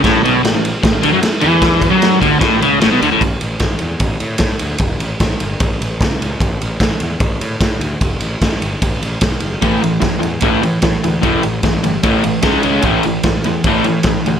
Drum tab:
RD |xxxxxxxx|xxxxxxxx|xxxxxxxx|xxxxxxxx|
SD |o-o-o-o-|o-o-o-o-|--o---o-|--o---o-|
BD |o---o---|oo-oo---|o-o-o-o-|o-o-o-o-|

RD |xxxxxxxx|xxxxxxxx|xxxxxxxx|xxxxxxxx|
SD |--o---o-|--o---o-|--o---o-|--o---o-|
BD |o-o-o-o-|o-o-o-o-|o-o-o-o-|o-o-o-o-|

RD |xxxxxxxx|
SD |--o---o-|
BD |o-o-o-o-|